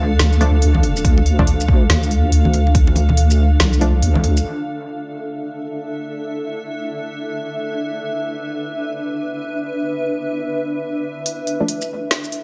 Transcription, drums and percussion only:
0.19 snare loud
0.19 closed hi-hat medium
0.19 high conga medium
0.33 shaker soft
0.41 closed hi-hat medium
0.62 closed hi-hat medium
0.74 high conga medium
0.83 closed hi-hat soft
0.83 muted conga soft
0.97 shaker medium
1.05 kick loud
1.05 closed hi-hat medium
1.18 muted conga medium
1.26 closed hi-hat medium
1.39 kick medium
1.39 high conga medium
1.39 low conga medium
1.47 closed hi-hat medium
1.60 shaker medium
1.68 kick loud
1.89 snare loud
1.89 closed hi-hat medium
1.89 high conga medium
2.03 shaker medium
2.11 closed hi-hat medium
2.32 closed hi-hat medium
2.45 high conga medium
2.54 closed hi-hat medium
2.54 muted conga medium
2.67 muted conga soft
2.75 kick loud
2.75 closed hi-hat medium
2.87 muted conga medium
2.96 closed hi-hat medium
2.96 muted conga medium
3.09 high conga medium
3.09 low conga medium
3.17 closed hi-hat medium
3.31 shaker medium
3.60 snare loud
3.60 closed hi-hat medium
3.60 high conga medium
3.73 shaker medium
3.81 closed hi-hat medium
4.02 closed hi-hat medium
4.15 high conga medium
4.24 closed hi-hat medium
4.24 muted conga medium
4.37 closed hi-hat soft
4.37 shaker medium
11.26 closed hi-hat medium
11.47 closed hi-hat medium
11.68 closed hi-hat medium
11.82 shaker medium
12.11 snare loud
12.11 closed hi-hat medium
12.24 shaker medium
12.32 closed hi-hat medium

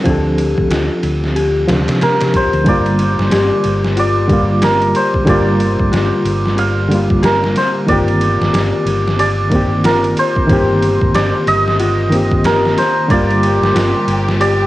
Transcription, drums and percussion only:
0.06 kick medium
0.06 ride medium
0.38 ride medium
0.58 kick medium
0.71 snare loud
0.71 ride medium
1.03 ride medium
1.24 snare soft
1.36 ride medium
1.68 snare loud
1.68 ride medium
1.88 snare loud
1.88 ride medium
2.01 snare loud
2.01 ride medium
2.20 snare loud
2.20 ride medium
2.34 kick loud
2.34 ride medium
2.53 ride soft
2.66 kick loud
2.66 ride medium
2.86 ride soft
2.99 ride medium
3.19 snare medium
3.31 snare loud
3.31 ride medium
3.64 ride medium
3.84 snare medium
3.97 ride medium
4.29 kick loud
4.29 ride medium
4.62 snare loud
4.62 ride medium
4.82 ride soft
4.95 ride medium
5.14 kick medium
5.27 kick loud
5.27 ride medium
5.60 ride medium
5.80 kick loud
5.93 snare loud
5.93 ride medium
6.26 ride medium
6.46 snare soft
6.58 ride medium
6.91 ride medium
7.10 kick medium
7.23 snare loud
7.23 ride medium
7.44 snare soft
7.56 snare soft
7.56 ride medium
7.88 kick loud
7.88 ride medium
8.08 ride soft
8.21 ride medium
8.42 snare medium
8.54 snare loud
8.54 ride medium
8.87 ride medium
9.08 snare soft
9.19 ride medium
9.52 kick medium
9.52 ride medium
9.84 snare loud
9.84 ride medium
10.04 ride soft
10.17 ride medium
10.36 kick loud
10.49 kick loud
10.49 ride medium
10.82 ride medium
11.01 kick loud
11.15 snare loud
11.15 ride medium
11.47 ride medium
11.68 snare soft
11.80 ride medium
12.12 ride medium
12.32 kick loud
12.44 snare loud
12.44 ride medium
12.65 snare soft
12.78 snare soft
12.78 ride medium
13.10 kick loud
13.10 ride medium
13.30 ride soft
13.43 ride medium
13.63 snare medium
13.76 snare loud
13.76 ride medium
14.08 ride medium
14.29 snare medium
14.41 ride medium

